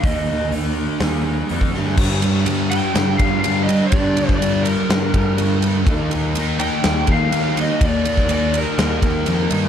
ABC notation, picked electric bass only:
X:1
M:4/4
L:1/8
Q:1/4=124
K:Gm
V:1 name="Picked electric bass" clef=bass
E,,4 E,,2 F,, G,, | G,,4 G,, G,,3 | G,,4 G,, G,,3 | E,,4 E,, E,,3 |
E,,4 E,, E,, F,, G,, |]